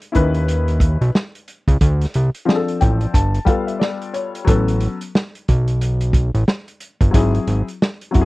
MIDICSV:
0, 0, Header, 1, 4, 480
1, 0, Start_track
1, 0, Tempo, 666667
1, 1300, Time_signature, 4, 2, 24, 8
1, 5940, End_track
2, 0, Start_track
2, 0, Title_t, "Upright piano"
2, 0, Program_c, 0, 0
2, 87, Note_on_c, 0, 64, 81
2, 96, Note_on_c, 0, 61, 79
2, 104, Note_on_c, 0, 63, 72
2, 113, Note_on_c, 0, 71, 92
2, 776, Note_off_c, 0, 64, 0
2, 780, Note_off_c, 0, 61, 0
2, 784, Note_off_c, 0, 63, 0
2, 789, Note_off_c, 0, 71, 0
2, 1767, Note_on_c, 0, 53, 85
2, 1774, Note_on_c, 0, 60, 76
2, 1783, Note_on_c, 0, 62, 75
2, 1793, Note_on_c, 0, 68, 76
2, 1839, Note_on_c, 0, 69, 91
2, 1843, Note_off_c, 0, 68, 0
2, 2021, Note_on_c, 0, 79, 69
2, 2244, Note_off_c, 0, 79, 0
2, 2253, Note_off_c, 0, 53, 0
2, 2257, Note_off_c, 0, 60, 0
2, 2258, Note_on_c, 0, 81, 79
2, 2261, Note_off_c, 0, 62, 0
2, 2289, Note_off_c, 0, 69, 0
2, 2482, Note_off_c, 0, 81, 0
2, 2484, Note_on_c, 0, 55, 85
2, 2491, Note_on_c, 0, 59, 75
2, 2496, Note_on_c, 0, 77, 73
2, 2500, Note_on_c, 0, 65, 76
2, 2509, Note_on_c, 0, 69, 89
2, 2634, Note_off_c, 0, 77, 0
2, 2642, Note_on_c, 0, 76, 65
2, 2731, Note_off_c, 0, 76, 0
2, 2732, Note_on_c, 0, 74, 73
2, 2959, Note_off_c, 0, 74, 0
2, 2978, Note_on_c, 0, 73, 73
2, 3174, Note_off_c, 0, 55, 0
2, 3178, Note_off_c, 0, 59, 0
2, 3182, Note_off_c, 0, 65, 0
2, 3187, Note_off_c, 0, 69, 0
2, 3201, Note_on_c, 0, 54, 85
2, 3202, Note_off_c, 0, 73, 0
2, 3209, Note_on_c, 0, 59, 76
2, 3219, Note_on_c, 0, 61, 71
2, 3228, Note_on_c, 0, 69, 89
2, 3567, Note_off_c, 0, 54, 0
2, 3571, Note_off_c, 0, 59, 0
2, 3576, Note_off_c, 0, 61, 0
2, 3580, Note_off_c, 0, 69, 0
2, 5119, Note_on_c, 0, 54, 81
2, 5130, Note_on_c, 0, 60, 70
2, 5140, Note_on_c, 0, 64, 78
2, 5147, Note_on_c, 0, 68, 87
2, 5486, Note_off_c, 0, 54, 0
2, 5491, Note_off_c, 0, 60, 0
2, 5496, Note_off_c, 0, 64, 0
2, 5500, Note_off_c, 0, 68, 0
2, 5840, Note_on_c, 0, 54, 77
2, 5849, Note_on_c, 0, 60, 74
2, 5858, Note_on_c, 0, 64, 74
2, 5866, Note_on_c, 0, 66, 70
2, 5914, Note_on_c, 0, 68, 88
2, 5920, Note_off_c, 0, 66, 0
2, 5940, Note_off_c, 0, 54, 0
2, 5940, Note_off_c, 0, 60, 0
2, 5940, Note_off_c, 0, 64, 0
2, 5940, Note_off_c, 0, 68, 0
2, 5940, End_track
3, 0, Start_track
3, 0, Title_t, "Analog synth bass"
3, 0, Program_c, 1, 38
3, 115, Note_on_c, 1, 39, 87
3, 704, Note_off_c, 1, 39, 0
3, 729, Note_on_c, 1, 35, 88
3, 799, Note_off_c, 1, 35, 0
3, 1207, Note_on_c, 1, 37, 99
3, 1278, Note_off_c, 1, 37, 0
3, 1304, Note_on_c, 1, 38, 98
3, 1485, Note_off_c, 1, 38, 0
3, 1551, Note_on_c, 1, 36, 91
3, 1657, Note_off_c, 1, 36, 0
3, 2031, Note_on_c, 1, 33, 92
3, 2209, Note_off_c, 1, 33, 0
3, 2264, Note_on_c, 1, 31, 97
3, 2445, Note_off_c, 1, 31, 0
3, 3223, Note_on_c, 1, 33, 104
3, 3515, Note_off_c, 1, 33, 0
3, 3952, Note_on_c, 1, 35, 96
3, 4543, Note_off_c, 1, 35, 0
3, 4568, Note_on_c, 1, 33, 94
3, 4639, Note_off_c, 1, 33, 0
3, 5046, Note_on_c, 1, 31, 93
3, 5118, Note_off_c, 1, 31, 0
3, 5144, Note_on_c, 1, 32, 106
3, 5325, Note_off_c, 1, 32, 0
3, 5381, Note_on_c, 1, 32, 90
3, 5492, Note_off_c, 1, 32, 0
3, 5870, Note_on_c, 1, 30, 87
3, 5940, Note_off_c, 1, 30, 0
3, 5940, End_track
4, 0, Start_track
4, 0, Title_t, "Drums"
4, 12, Note_on_c, 9, 42, 54
4, 84, Note_off_c, 9, 42, 0
4, 106, Note_on_c, 9, 42, 66
4, 112, Note_on_c, 9, 36, 87
4, 178, Note_off_c, 9, 42, 0
4, 184, Note_off_c, 9, 36, 0
4, 247, Note_on_c, 9, 42, 53
4, 319, Note_off_c, 9, 42, 0
4, 348, Note_on_c, 9, 42, 88
4, 420, Note_off_c, 9, 42, 0
4, 489, Note_on_c, 9, 42, 55
4, 561, Note_off_c, 9, 42, 0
4, 577, Note_on_c, 9, 36, 97
4, 583, Note_on_c, 9, 42, 69
4, 649, Note_off_c, 9, 36, 0
4, 655, Note_off_c, 9, 42, 0
4, 731, Note_on_c, 9, 42, 49
4, 803, Note_off_c, 9, 42, 0
4, 829, Note_on_c, 9, 38, 102
4, 901, Note_off_c, 9, 38, 0
4, 973, Note_on_c, 9, 42, 50
4, 1045, Note_off_c, 9, 42, 0
4, 1064, Note_on_c, 9, 42, 74
4, 1136, Note_off_c, 9, 42, 0
4, 1207, Note_on_c, 9, 36, 80
4, 1211, Note_on_c, 9, 42, 50
4, 1279, Note_off_c, 9, 36, 0
4, 1283, Note_off_c, 9, 42, 0
4, 1302, Note_on_c, 9, 42, 85
4, 1303, Note_on_c, 9, 36, 101
4, 1374, Note_off_c, 9, 42, 0
4, 1375, Note_off_c, 9, 36, 0
4, 1450, Note_on_c, 9, 42, 56
4, 1465, Note_on_c, 9, 38, 38
4, 1522, Note_off_c, 9, 42, 0
4, 1537, Note_off_c, 9, 38, 0
4, 1541, Note_on_c, 9, 42, 81
4, 1613, Note_off_c, 9, 42, 0
4, 1689, Note_on_c, 9, 42, 59
4, 1761, Note_off_c, 9, 42, 0
4, 1792, Note_on_c, 9, 38, 100
4, 1864, Note_off_c, 9, 38, 0
4, 1931, Note_on_c, 9, 42, 52
4, 2003, Note_off_c, 9, 42, 0
4, 2022, Note_on_c, 9, 42, 70
4, 2030, Note_on_c, 9, 36, 90
4, 2094, Note_off_c, 9, 42, 0
4, 2102, Note_off_c, 9, 36, 0
4, 2165, Note_on_c, 9, 42, 52
4, 2237, Note_off_c, 9, 42, 0
4, 2262, Note_on_c, 9, 36, 97
4, 2266, Note_on_c, 9, 42, 84
4, 2334, Note_off_c, 9, 36, 0
4, 2338, Note_off_c, 9, 42, 0
4, 2407, Note_on_c, 9, 42, 57
4, 2479, Note_off_c, 9, 42, 0
4, 2495, Note_on_c, 9, 36, 103
4, 2499, Note_on_c, 9, 42, 75
4, 2567, Note_off_c, 9, 36, 0
4, 2571, Note_off_c, 9, 42, 0
4, 2650, Note_on_c, 9, 42, 53
4, 2722, Note_off_c, 9, 42, 0
4, 2747, Note_on_c, 9, 38, 97
4, 2819, Note_off_c, 9, 38, 0
4, 2891, Note_on_c, 9, 42, 51
4, 2963, Note_off_c, 9, 42, 0
4, 2982, Note_on_c, 9, 42, 69
4, 3054, Note_off_c, 9, 42, 0
4, 3132, Note_on_c, 9, 42, 58
4, 3204, Note_off_c, 9, 42, 0
4, 3222, Note_on_c, 9, 36, 101
4, 3223, Note_on_c, 9, 42, 84
4, 3294, Note_off_c, 9, 36, 0
4, 3295, Note_off_c, 9, 42, 0
4, 3371, Note_on_c, 9, 42, 55
4, 3443, Note_off_c, 9, 42, 0
4, 3459, Note_on_c, 9, 42, 74
4, 3531, Note_off_c, 9, 42, 0
4, 3607, Note_on_c, 9, 42, 60
4, 3679, Note_off_c, 9, 42, 0
4, 3710, Note_on_c, 9, 38, 115
4, 3782, Note_off_c, 9, 38, 0
4, 3853, Note_on_c, 9, 42, 53
4, 3925, Note_off_c, 9, 42, 0
4, 3948, Note_on_c, 9, 42, 71
4, 3951, Note_on_c, 9, 36, 92
4, 4020, Note_off_c, 9, 42, 0
4, 4023, Note_off_c, 9, 36, 0
4, 4086, Note_on_c, 9, 42, 59
4, 4158, Note_off_c, 9, 42, 0
4, 4185, Note_on_c, 9, 42, 96
4, 4257, Note_off_c, 9, 42, 0
4, 4324, Note_on_c, 9, 42, 58
4, 4396, Note_off_c, 9, 42, 0
4, 4415, Note_on_c, 9, 36, 94
4, 4422, Note_on_c, 9, 42, 73
4, 4487, Note_off_c, 9, 36, 0
4, 4494, Note_off_c, 9, 42, 0
4, 4569, Note_on_c, 9, 42, 50
4, 4641, Note_off_c, 9, 42, 0
4, 4664, Note_on_c, 9, 38, 106
4, 4736, Note_off_c, 9, 38, 0
4, 4808, Note_on_c, 9, 42, 54
4, 4880, Note_off_c, 9, 42, 0
4, 4898, Note_on_c, 9, 42, 69
4, 4970, Note_off_c, 9, 42, 0
4, 5045, Note_on_c, 9, 36, 85
4, 5048, Note_on_c, 9, 42, 54
4, 5117, Note_off_c, 9, 36, 0
4, 5120, Note_off_c, 9, 42, 0
4, 5141, Note_on_c, 9, 36, 102
4, 5142, Note_on_c, 9, 42, 92
4, 5213, Note_off_c, 9, 36, 0
4, 5214, Note_off_c, 9, 42, 0
4, 5289, Note_on_c, 9, 42, 51
4, 5361, Note_off_c, 9, 42, 0
4, 5381, Note_on_c, 9, 42, 80
4, 5453, Note_off_c, 9, 42, 0
4, 5532, Note_on_c, 9, 42, 57
4, 5604, Note_off_c, 9, 42, 0
4, 5632, Note_on_c, 9, 38, 107
4, 5704, Note_off_c, 9, 38, 0
4, 5770, Note_on_c, 9, 42, 51
4, 5842, Note_off_c, 9, 42, 0
4, 5862, Note_on_c, 9, 42, 71
4, 5869, Note_on_c, 9, 36, 88
4, 5934, Note_off_c, 9, 42, 0
4, 5940, Note_off_c, 9, 36, 0
4, 5940, End_track
0, 0, End_of_file